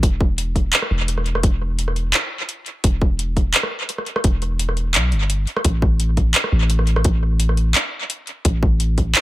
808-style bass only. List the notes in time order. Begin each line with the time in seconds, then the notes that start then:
0.03 E1
0.91 E1
1.44 E1
2.84 E1
4.24 E1
4.95 B1
5.12 G1
5.65 A1
6.52 A1
7.05 A1
8.45 A1